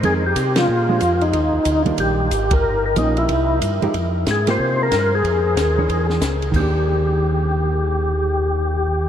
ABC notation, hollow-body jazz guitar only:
X:1
M:4/4
L:1/8
Q:"Swing" 1/4=185
K:Eb
V:1 name="Hollow-body jazz guitar"
[E,A,C] z2 [F,A,D] z [F,A,D] z2 | z3 [E,G,B,D]3 z2 | z2 [F,B,_D]2 z3 [F,A,EG] | z3 [B,FG]3 z2 |
z3 [_F,DA_d]3 z2 | [E,B,DG]8- | [E,B,DG]8 |]